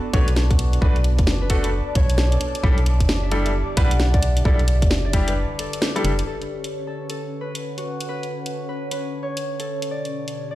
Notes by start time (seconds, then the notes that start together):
Already playing: B3 D4 F#4 A4 D5 A5
0.13 B1 A3 D4 F#4 B4 C#5, kick, closed hi-hat
0.28 closed hi-hat
0.36 snare
0.50 F#4, kick, closed hi-hat
0.59 closed hi-hat
0.73 closed hi-hat
0.82 B1 A3 D4 F#4 B4, kick
0.96 closed hi-hat
1.04 closed hi-hat
1.19 F#1, kick, closed hi-hat
1.27 snare
1.42 B4
1.50 A3 D4 F#4 A4, kick, closed hi-hat
1.64 B4, closed hi-hat
1.95 B1 C#5, kick, closed hi-hat
2.10 closed hi-hat
2.18 snare
2.32 A4, closed hi-hat
2.41 D3, closed hi-hat
2.55 closed hi-hat
2.59 G4 E5
2.63 B1 G3 D4 E4 A4 E5, kick
2.78 closed hi-hat
2.86 closed hi-hat
3.00 F#1, kick, closed hi-hat
3.09 snare
3.23 E5
3.32 G3 D4 E4 A4, closed hi-hat
3.46 E5, closed hi-hat
3.77 B1 G3 D4 E4 B4 F#5, kick, closed hi-hat
3.91 closed hi-hat
4.00 snare
4.14 D5, kick, closed hi-hat
4.23 closed hi-hat
4.37 closed hi-hat
4.45 B1 G3 D4 E4 A4 D5, kick
4.59 closed hi-hat
4.68 closed hi-hat
4.82 F#1, kick, closed hi-hat
4.91 snare
5.05 D5, cross-stick
5.13 G3 D4 E4 G4, kick, closed hi-hat
5.28 B4, cross-stick, closed hi-hat
5.59 A4, closed hi-hat
5.73 closed hi-hat
5.82 snare
5.96 G3 D4 E4 G4 A4, closed hi-hat
6.04 F#1, closed hi-hat
6.19 closed hi-hat
6.27 C#4 A4 C#5
6.39 B4, closed hi-hat
6.52 F#5
6.64 closed hi-hat
6.87 A4
7.10 A4, closed hi-hat
7.41 B4
7.55 closed hi-hat
7.78 F#4, closed hi-hat
8.00 closed hi-hat
8.09 B4
8.23 closed hi-hat
8.46 closed hi-hat
8.69 B4
8.91 B4, closed hi-hat
9.23 C#5
9.37 closed hi-hat
9.60 A4, closed hi-hat
9.68 B2
9.82 closed hi-hat
9.90 G4 D5
9.98 E5
10.05 closed hi-hat
10.28 closed hi-hat
10.51 D5